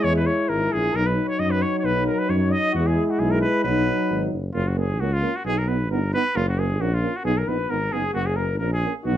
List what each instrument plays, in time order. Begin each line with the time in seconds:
Already playing: euphonium G#3, french horn E4
0.01 tuba E2, flugelhorn C#5, cornet C#5
0.16 flugelhorn B4, cornet B4
0.26 flugelhorn C#5, cornet C#5
0.49 tuba G#1, cornet A#4, flugelhorn A#4
0.71 tuba A#1, flugelhorn G#4, cornet G#4
0.92 tuba B1, euphonium F#3, french horn D#4, flugelhorn A#4, cornet A#4
1.06 flugelhorn B4, cornet B4
1.27 flugelhorn C#5, cornet C#5
1.39 tuba F#2, flugelhorn D#5, cornet D#5
1.49 flugelhorn B4, cornet B4
1.61 flugelhorn C#5, cornet C#5
1.78 flugelhorn C#5, cornet C#5
1.83 tuba B1, flugelhorn B4, cornet B4
2.06 flugelhorn A#4, cornet A#4
2.19 cornet B4, flugelhorn B4
2.28 tuba F#2, flugelhorn C#5, cornet C#5
2.50 flugelhorn D#5, cornet D#5
2.71 tuba E2, euphonium G#3, french horn E4, flugelhorn F#4, cornet F#4
2.87 flugelhorn G#4, cornet G#4
3.06 flugelhorn F#4 G#4, cornet G#4
3.10 cornet F#4
3.19 tuba B1, flugelhorn G#4, cornet G#4
3.31 cornet A#4, flugelhorn A#4
3.42 cornet B4, flugelhorn B4
3.64 tuba B1, euphonium F#3, french horn D#4, cornet B4, flugelhorn B4
4.10 tuba G#1
4.32 tuba F#1
4.54 tuba F#1, euphonium A#3, french horn C#4, cornet F4
4.68 cornet F#4
4.76 euphonium A#3, french horn C#4, cornet G#4
4.99 tuba C#2, euphonium A#3, french horn C#4, cornet F#4
5.13 cornet F4
5.22 euphonium A#3, french horn C#4
5.36 cornet F#4
5.44 tuba B1, euphonium B3, french horn D#4, cornet G#4
5.58 cornet A#4
5.68 euphonium B3, french horn D#4, cornet B4
5.90 tuba G1, euphonium B3, french horn D#4, cornet A#4
6.13 euphonium B3, french horn D#4, cornet B4
6.35 tuba F#1, euphonium A#3, french horn C#4, cornet F4
6.48 cornet F#4
6.58 euphonium A#3, french horn C#4, cornet G#4
6.80 tuba A#1, euphonium A#3, french horn C#4, cornet F#4
6.94 cornet F4
7.02 euphonium A#3, french horn C#4
7.16 cornet F#4
7.24 tuba B1, euphonium B3, french horn D#4, flugelhorn G#4, cornet G#4
7.38 cornet A#4, flugelhorn A#4
7.46 tuba A#1, euphonium B3, french horn D#4, cornet B4, flugelhorn B4
7.68 tuba G#1, euphonium B3, french horn D#4, cornet A#4, flugelhorn A#4
7.92 tuba F#1, euphonium B3, french horn D#4, flugelhorn G#4, cornet G#4
8.14 tuba F#1, euphonium A#3, french horn C#4, cornet F#4, flugelhorn F#4
8.26 cornet G#4, flugelhorn G#4
8.36 euphonium A#3, french horn C#4, cornet A#4, flugelhorn A#4
8.58 tuba A#1, euphonium A#3, french horn C#4, cornet A#4, flugelhorn A#4
8.71 flugelhorn G#4, cornet G#4
8.82 euphonium A#3, french horn C#4
9.04 tuba B1, euphonium B3, french horn D#4, flugelhorn F#4, cornet F#4